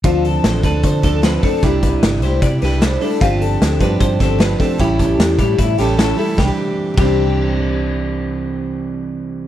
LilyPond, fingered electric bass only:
\new Staff \with { instrumentName = "Fingered electric bass" } { \clef bass \time 4/4 \key c \major \tempo 4 = 152 d,4 a,,8 d,8 d8 d,4 r8 | c,4 g,,8 c,8 c8 c,4 r8 | g,,4 d,8 g,8 g,8 g,,4 r8 | a,,4 e,8 a,8 a,8 a,,4 r8 |
c,8 r4 c,2~ c,8~ | c,1 | }